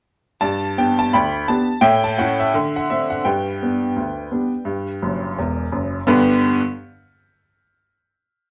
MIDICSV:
0, 0, Header, 1, 2, 480
1, 0, Start_track
1, 0, Key_signature, 1, "major"
1, 0, Tempo, 707547
1, 280, Time_signature, 2, 2, 24, 8
1, 5767, End_track
2, 0, Start_track
2, 0, Title_t, "Upright piano"
2, 0, Program_c, 0, 0
2, 277, Note_on_c, 0, 81, 98
2, 281, Note_on_c, 0, 43, 85
2, 284, Note_on_c, 0, 74, 67
2, 396, Control_c, 0, 64, 127
2, 485, Note_off_c, 0, 43, 0
2, 505, Note_off_c, 0, 74, 0
2, 519, Note_off_c, 0, 81, 0
2, 529, Note_on_c, 0, 59, 53
2, 530, Note_on_c, 0, 79, 71
2, 532, Note_on_c, 0, 62, 45
2, 533, Note_on_c, 0, 67, 52
2, 658, Note_off_c, 0, 59, 0
2, 660, Note_off_c, 0, 62, 0
2, 661, Note_off_c, 0, 67, 0
2, 667, Note_off_c, 0, 79, 0
2, 670, Note_on_c, 0, 81, 95
2, 763, Note_off_c, 0, 81, 0
2, 767, Control_c, 0, 64, 0
2, 769, Note_on_c, 0, 83, 94
2, 773, Note_on_c, 0, 38, 76
2, 774, Note_on_c, 0, 79, 68
2, 778, Note_on_c, 0, 74, 68
2, 970, Note_off_c, 0, 38, 0
2, 989, Note_off_c, 0, 79, 0
2, 991, Note_off_c, 0, 74, 0
2, 1003, Note_off_c, 0, 83, 0
2, 1006, Note_on_c, 0, 81, 88
2, 1007, Note_on_c, 0, 59, 54
2, 1012, Note_on_c, 0, 62, 50
2, 1016, Note_on_c, 0, 67, 58
2, 1136, Note_off_c, 0, 59, 0
2, 1140, Note_off_c, 0, 62, 0
2, 1143, Note_off_c, 0, 67, 0
2, 1229, Note_on_c, 0, 79, 104
2, 1230, Note_on_c, 0, 45, 99
2, 1236, Note_on_c, 0, 73, 80
2, 1239, Note_on_c, 0, 76, 80
2, 1241, Note_off_c, 0, 81, 0
2, 1365, Control_c, 0, 64, 127
2, 1369, Note_off_c, 0, 73, 0
2, 1370, Note_off_c, 0, 76, 0
2, 1376, Note_off_c, 0, 79, 0
2, 1383, Note_on_c, 0, 81, 77
2, 1437, Note_off_c, 0, 45, 0
2, 1479, Note_off_c, 0, 81, 0
2, 1479, Note_on_c, 0, 57, 60
2, 1482, Note_on_c, 0, 78, 94
2, 1487, Note_on_c, 0, 61, 64
2, 1488, Note_on_c, 0, 64, 69
2, 1610, Note_off_c, 0, 57, 0
2, 1616, Note_off_c, 0, 61, 0
2, 1617, Note_off_c, 0, 64, 0
2, 1622, Note_off_c, 0, 78, 0
2, 1626, Note_on_c, 0, 76, 82
2, 1724, Control_c, 0, 64, 0
2, 1724, Note_on_c, 0, 50, 84
2, 1855, Control_c, 0, 64, 127
2, 1862, Note_off_c, 0, 76, 0
2, 1874, Note_on_c, 0, 78, 79
2, 1925, Note_off_c, 0, 50, 0
2, 1964, Note_off_c, 0, 78, 0
2, 1968, Note_on_c, 0, 76, 75
2, 1971, Note_on_c, 0, 57, 42
2, 1976, Note_on_c, 0, 62, 52
2, 1978, Note_on_c, 0, 60, 43
2, 2099, Note_off_c, 0, 57, 0
2, 2102, Note_off_c, 0, 62, 0
2, 2104, Note_off_c, 0, 60, 0
2, 2104, Note_on_c, 0, 78, 72
2, 2105, Note_off_c, 0, 76, 0
2, 2199, Note_off_c, 0, 78, 0
2, 2201, Note_on_c, 0, 79, 67
2, 2205, Control_c, 0, 64, 0
2, 2206, Note_on_c, 0, 43, 71
2, 2209, Note_on_c, 0, 71, 55
2, 2209, Note_on_c, 0, 74, 48
2, 2328, Control_c, 0, 64, 127
2, 2407, Note_off_c, 0, 43, 0
2, 2453, Note_on_c, 0, 55, 34
2, 2459, Note_on_c, 0, 59, 41
2, 2461, Note_on_c, 0, 62, 40
2, 2581, Note_off_c, 0, 55, 0
2, 2586, Note_off_c, 0, 59, 0
2, 2587, Note_off_c, 0, 62, 0
2, 2685, Control_c, 0, 64, 0
2, 2688, Note_on_c, 0, 38, 51
2, 2889, Note_off_c, 0, 38, 0
2, 2926, Note_on_c, 0, 55, 36
2, 2927, Note_on_c, 0, 59, 37
2, 2929, Note_on_c, 0, 62, 39
2, 3057, Note_off_c, 0, 55, 0
2, 3058, Note_off_c, 0, 59, 0
2, 3059, Note_off_c, 0, 62, 0
2, 3155, Note_on_c, 0, 43, 65
2, 3288, Control_c, 0, 64, 127
2, 3362, Note_off_c, 0, 43, 0
2, 3409, Note_on_c, 0, 30, 57
2, 3409, Note_on_c, 0, 42, 59
2, 3587, Note_off_c, 0, 30, 0
2, 3587, Note_off_c, 0, 42, 0
2, 3622, Note_off_c, 0, 71, 0
2, 3622, Note_off_c, 0, 74, 0
2, 3645, Note_off_c, 0, 79, 0
2, 3651, Note_on_c, 0, 40, 57
2, 3652, Control_c, 0, 64, 0
2, 3654, Note_on_c, 0, 28, 58
2, 3828, Note_off_c, 0, 40, 0
2, 3830, Note_off_c, 0, 28, 0
2, 3881, Note_on_c, 0, 42, 55
2, 3883, Note_on_c, 0, 30, 58
2, 4062, Note_off_c, 0, 42, 0
2, 4063, Note_off_c, 0, 30, 0
2, 4116, Note_on_c, 0, 59, 85
2, 4118, Note_on_c, 0, 43, 104
2, 4121, Note_on_c, 0, 50, 88
2, 4123, Note_on_c, 0, 62, 82
2, 4123, Note_on_c, 0, 67, 88
2, 4126, Note_on_c, 0, 71, 84
2, 4251, Control_c, 0, 64, 127
2, 4395, Note_off_c, 0, 59, 0
2, 4396, Note_off_c, 0, 43, 0
2, 4397, Note_off_c, 0, 50, 0
2, 4399, Note_off_c, 0, 62, 0
2, 4399, Note_off_c, 0, 67, 0
2, 4400, Note_off_c, 0, 71, 0
2, 4472, Control_c, 0, 64, 0
2, 5767, End_track
0, 0, End_of_file